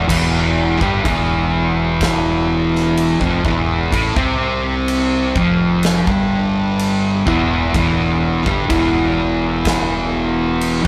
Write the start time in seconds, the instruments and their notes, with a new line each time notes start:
0.08 fingered electric bass E1, distorted electric guitar E2 E3, kick, crash
0.81 fingered electric bass G1, distorted electric guitar G2 G3, kick
1.04 fingered electric bass E1, distorted electric guitar E2 E3, kick, crash
2.01 kick, snare, crash
2.76 snare
2.97 crash
3.20 fingered electric bass F1, distorted electric guitar F2 F3, kick
3.45 fingered electric bass E1, distorted electric guitar E2 E3, kick
3.92 fingered electric bass A1, distorted electric guitar A2 A3, kick, crash
4.16 fingered electric bass C2, distorted electric guitar C3 C4, kick
4.88 crash
5.35 fingered electric bass F1, distorted electric guitar F2 F3, kick
5.83 snare, crash
6.07 fingered electric bass G1, distorted electric guitar G2 G3, kick
6.79 crash
7.27 fingered electric bass E1, distorted electric guitar E2 E3, kick
7.74 fingered electric bass E1, distorted electric guitar E2 E3, kick, crash
8.46 fingered electric bass G1, distorted electric guitar G2 G3, kick
8.69 fingered electric bass E1, distorted electric guitar E2 E3, kick, crash
9.65 kick, snare, crash
10.61 crash
10.83 distorted electric guitar F2 F3